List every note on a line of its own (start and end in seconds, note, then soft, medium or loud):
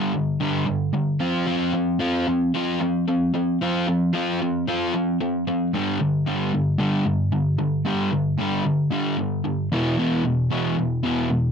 0.00 0.12 G2 medium
0.00 0.13 D3 loud
0.00 0.13 G3 medium
0.14 0.38 G2 medium
0.14 0.38 D3 medium
0.40 0.65 G2 medium
0.40 0.65 D3 medium
0.40 0.66 G3 medium
0.66 0.91 G2 medium
0.66 0.91 D3 medium
0.94 1.18 G2 medium
0.94 1.18 D3 medium
1.20 1.45 F3 medium
1.20 1.46 C4 medium
1.20 1.46 F4 loud
1.46 1.72 F3 medium
1.46 1.72 C4 loud
1.46 1.72 F4 medium
1.73 1.98 F3 medium
1.73 1.98 C4 medium
1.99 2.25 F3 medium
1.99 2.25 C4 medium
1.99 2.26 F4 medium
2.27 2.51 F3 medium
2.27 2.51 C4 medium
2.54 2.79 F3 medium
2.54 2.79 C4 medium
2.54 2.80 F4 loud
2.80 3.04 F3 medium
2.80 3.05 C4 medium
3.08 3.31 F3 medium
3.08 3.31 C4 medium
3.34 3.58 F3 medium
3.34 3.58 C4 medium
3.61 3.86 F3 medium
3.61 3.86 C4 medium
3.61 3.86 F4 medium
3.88 4.11 F3 medium
3.88 4.11 C4 medium
4.13 4.38 F3 medium
4.13 4.39 C4 medium
4.13 4.39 F4 loud
4.42 4.65 F3 medium
4.42 4.65 C4 medium
4.67 4.92 F3 medium
4.67 4.92 C4 medium
4.67 4.93 F4 loud
4.94 5.17 F3 medium
4.94 5.18 C4 medium
5.21 5.44 F3 medium
5.21 5.44 C4 medium
5.47 5.71 F3 medium
5.47 5.71 C4 medium
5.74 5.98 G2 medium
5.74 5.99 D3 loud
5.74 5.99 G3 loud
6.01 6.24 G2 medium
6.01 6.24 D3 medium
6.26 6.51 G2 medium
6.26 6.51 D3 medium
6.26 6.51 G3 medium
6.54 6.77 G2 medium
6.54 6.77 D3 medium
6.78 7.04 G2 medium
6.78 7.04 D3 medium
6.78 7.04 G3 loud
7.06 7.30 G2 medium
7.06 7.30 D3 medium
7.32 7.56 G2 medium
7.32 7.56 D3 medium
7.59 7.82 G2 medium
7.59 7.83 D3 medium
7.85 8.10 G2 medium
7.85 8.11 D3 medium
7.85 8.11 G3 loud
8.13 8.36 G2 medium
8.13 8.36 D3 medium
8.39 8.63 G2 medium
8.39 8.64 D3 medium
8.39 8.64 G3 loud
8.65 8.89 G2 medium
8.65 8.89 D3 medium
8.91 9.16 G2 loud
8.91 9.16 D3 loud
8.91 9.17 G3 loud
9.18 9.42 G2 medium
9.18 9.42 D3 medium
9.44 9.68 G2 medium
9.44 9.68 D3 medium
9.72 9.96 E2 medium
9.72 9.97 B2 loud
9.72 9.97 E3 loud
9.98 10.22 E2 medium
9.98 10.23 B2 medium
9.98 10.23 E3 medium
10.25 10.48 E2 medium
10.25 10.48 B2 medium
10.51 10.75 E2 medium
10.51 10.76 B2 medium
10.51 10.76 E3 medium
10.78 11.01 E2 medium
10.78 11.01 B2 medium
11.03 11.28 E2 loud
11.03 11.28 B2 medium
11.03 11.28 E3 loud
11.30 11.52 E2 medium
11.30 11.52 B2 medium